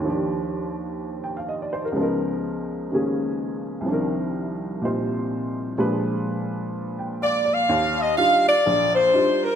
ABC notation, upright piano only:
X:1
M:4/4
L:1/16
Q:"Swing" 1/4=126
K:Eb
V:1 name="Upright piano"
z8 z2 g f e d c B | z16 | z16 | z8 z2 g2 f2 d2- |
d z12 z3 |]
V:2 name="Upright piano"
[E,,E,F,DG]16 | [_D,,_D,F,_CEB]8 [D,E,B,_DA]8 | [C,,C,E,F,DB]8 [B,,G,EFc]8 | [B,,F,A,D_c]16 |
E,,4 [G,DEF]2 z2 B,,,4 [G,DEF]2 z2 |]